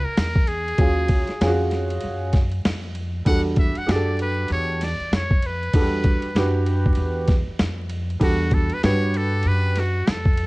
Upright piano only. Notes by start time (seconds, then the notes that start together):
0.78 F#3 C#4 F4 G#4
1.41 F3 C#4 F4 G#4
1.47 F#4
3.25 G3 D4 F#4 A4
3.87 D4 F#4 G4 G#4
3.95 A4
5.73 F#3 D4 F#4 A4
5.80 G3
6.36 D4 F#4 G4 B4
8.20 G3 D4 F#4 A4
8.83 D4 F#4 G4 B4